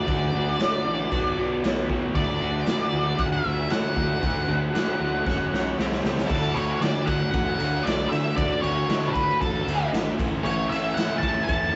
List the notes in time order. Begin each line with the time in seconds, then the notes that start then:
Already playing: D5
0.06 D2 D3 A3 D4 F#4, kick, crash
0.33 D2 D3 A3 D4 F#4
0.59 A2 D3 A3 D4 F#4, snare, crash
0.84 A1 D3 A3 D4 F#4
1.10 B1 B2 F#3 B3 F#4, kick, crash
1.37 B1 B2 F#3 B3 F#4
1.63 B1 B2 F#3 B3 F#4, snare, crash
1.89 B1 B2 F#3 B3 F#4, kick
2.15 D2 D3 A3 D4 F#4 D5, kick, crash
2.40 D2 D3 A3 D4 F#4
2.66 A2 D3 A3 D4 F#4, snare, crash
2.93 D2 D3 A3 D4 F#4
3.18 D2 D3 A3 D4 F#4 F#5, kick, crash
3.32 E5
3.44 D2 D3 A3 D4 F#4
3.70 A2 D3 A3 D4 F#4 F#5, snare, crash
3.95 D2 D3 A3 D4 F#4, kick
4.21 D2 D3 A3 D4 F#4, kick, crash
4.47 D2 D3 A3 D4 F#4
4.74 A2 D3 A3 D4 F#4, snare, crash
4.99 D2 D3 A3 D4 F#4
5.25 F#1 F#3 C#4 F#4 C#5, kick, snare
5.52 B1 F#3 C#4 F#4 C#5, snare
5.77 C2 C3 G3 C4 G4, snare
5.92 snare
6.03 C#2 C3 G3 C4 G4, snare
6.18 snare
6.27 D2 D3 A3 D4 F#4 A4, kick, crash
6.54 D2 D3 A3 D4 F#4 C#5, ride
6.81 D3 A3 D4 F#4 D5, snare, ride
7.06 D3 A3 D4 F#4 F#5, kick, ride
7.31 A1 D3 A3 D4 F#4 F#5, kick, ride
7.58 D2 D3 A3 D4 F#4, ride
7.83 B1 D3 A3 D4 F#4 D5, ride
7.88 snare
8.09 D3 A3 D4 F#4 E5, ride
8.36 D2 D3 A3 D4 F#4 D5, kick, ride
8.61 D2 D3 A3 D4 F#4 C#5, ride
8.87 D3 A3 D4 F#4, snare, ride
9.08 A4
9.13 D3 A3 D4 F#4 B4, kick, ride
9.40 A1 D3 A3 D4 F#4 A4, kick, ride
9.67 D2 D3 A3 D4 F#4, ride
9.93 G#1 D3 A3 D4 F#4, snare, ride
10.18 A1 A2 E3 A3 C#4 E4, kick, ride
10.44 A1 A2 E3 A3 C#4 E4 C#5, ride
10.69 A1 A2 E3 A3 C#4 E4 E5, ride
10.94 A2 E3 A3 C#4 E4 F#5, ride
10.98 snare
11.18 A2 E3 A3 A5
11.23 C#4 E4, kick, ride
11.44 A2 E3 A5
11.49 E1 A3 C#4 E4, kick, ride